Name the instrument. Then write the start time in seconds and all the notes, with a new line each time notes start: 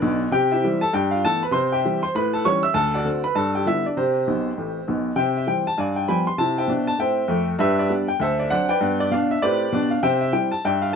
upright piano
Already playing: D4 B4 D5
0.02 B1 B2
0.31 C3 G4 G5
0.52 E4 C5 E5
0.64 E3 G3 C4
0.81 A4 A5
0.93 G2 G4 G5
1.11 F4 F5
1.24 E3 A3 B3 A4 A5
1.43 B4 B5
1.51 C3 C5 C6
1.72 G4 E5 G5
1.85 E3 G3 C4
2.03 C5 C6
2.15 A2 B4 B5
2.33 A4 A5
2.45 E3 G3 C#4 C#5 C#6
2.63 E5 E6
2.74 D2 A4 A5
2.94 F#4 D5 F#5
3.05 D3 A3 C4
3.24 B4 B5
3.35 G2 A4 A5
3.55 G4 G5
3.66 D3 G3 B3 E4 E5
3.86 D4 D5
3.97 C3 C4 G4 C5
4.28 B1 B2
4.57 A1 A2
4.88 B1 B2
5.16 C3 C5 E5 G5
5.37 E5
5.47 E3 G3 C4 G5
5.67 A5
5.78 G2 D5 F5 G#5
5.96 G5
6.08 F3 G3 B3 G5 G#5 B5
6.27 C6
6.38 C3 E4 A5
6.58 C5 E5 G5
6.68 B2 D4
6.87 A5
6.98 A2 C4 C5 E5 G5
7.28 F2 A3
7.59 G2 G4 B4 E5
7.79 G4 B4 D5
7.90 G3 B3 D4
8.08 G5
8.20 D2 A4 C5 E5
8.39 D5
8.50 F#3 C4 D4 C5 D5 F#5
8.69 B4 D5 G5
8.81 G2 B3
9.00 D5
9.11 B2 D4 F5
9.31 E5
9.42 A2 C4 G4 B4 D5
9.72 B2 D4
9.90 F5
10.03 C3 C5 E5 G5
10.21 E5
10.33 G3 C4 E4 G5
10.52 A5
10.65 G2 D5 E5 G5
10.82 F5